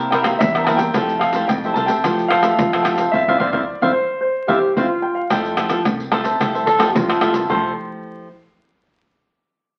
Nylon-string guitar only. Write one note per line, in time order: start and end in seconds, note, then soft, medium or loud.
0.00 0.38 C3 medium
0.00 0.12 A#3 soft
0.00 0.12 E4 medium
0.00 0.12 G4 medium
0.25 0.63 A#3 medium
0.25 0.63 E4 medium
0.25 0.63 G4 medium
0.41 0.93 G2 medium
0.68 0.91 A#3 medium
0.68 0.91 E4 medium
0.68 0.91 G4 medium
0.96 1.47 F3 medium
0.96 1.21 A3 medium
0.96 1.21 E4 medium
0.96 1.21 G4 medium
1.35 1.58 A3 medium
1.35 1.59 E4 medium
1.35 1.59 G4 medium
1.51 2.02 C3 medium
1.64 1.87 A3 medium
1.64 1.87 E4 medium
1.64 1.87 G4 medium
1.88 1.99 A3 medium
1.88 1.99 E4 medium
1.88 1.99 G4 medium
2.04 2.56 F3 medium
2.04 2.41 A3 medium
2.04 2.41 E4 medium
2.04 2.41 G4 medium
2.42 2.80 A3 medium
2.42 2.81 G4 medium
2.59 3.10 C3 medium
2.85 3.01 A3 soft
2.85 3.01 E4 medium
2.85 3.02 G4 medium
3.13 3.22 C4 medium
3.13 3.22 E4 medium
3.13 3.22 F4 loud
3.28 3.36 C4 loud
3.28 3.36 E4 medium
3.28 3.36 F4 loud
3.40 3.49 C4 medium
3.40 3.49 E4 medium
3.40 3.49 F4 medium
3.52 3.62 C4 loud
3.52 3.62 E4 medium
3.52 3.62 F4 loud
3.81 3.90 C4 medium
3.81 3.90 E4 medium
3.81 3.90 F4 loud
4.49 4.58 C4 loud
4.49 4.58 E4 loud
4.49 4.58 F4 medium
4.77 4.85 C4 loud
4.77 4.86 E4 medium
4.77 4.86 F4 medium
5.31 5.83 F3 medium
5.31 5.54 A3 medium
5.31 5.54 E4 medium
5.31 5.54 G4 medium
5.58 5.81 A3 medium
5.58 5.81 E4 medium
5.58 5.81 G4 medium
5.86 6.38 C3 medium
5.86 6.02 A3 medium
5.86 6.02 E4 medium
5.86 6.02 G4 medium
6.12 6.35 A3 medium
6.12 6.35 E4 medium
6.12 6.35 G4 medium
6.40 6.92 F3 medium
6.40 6.66 A3 medium
6.40 6.66 E4 medium
6.40 6.66 G4 medium
6.79 6.89 A3 medium
6.79 6.89 E4 medium
6.79 6.90 G4 medium
6.94 7.46 C3 medium
6.94 7.10 A3 medium
6.94 7.11 E4 medium
6.94 7.11 G4 medium
7.20 7.39 A3 medium
7.20 7.39 E4 medium
7.20 7.39 G4 medium
7.48 8.27 F3 medium
7.48 8.27 A3 medium
7.48 8.27 E4 medium
7.48 8.27 G4 medium